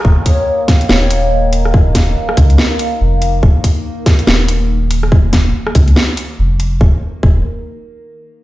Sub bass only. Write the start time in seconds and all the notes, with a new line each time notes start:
0.05 D#1
0.89 D#1
2.37 C#2
3.01 F1
3.43 D#1
4.27 D#1
5.75 C#2
6.39 F1
6.81 D#1
7.23 D#1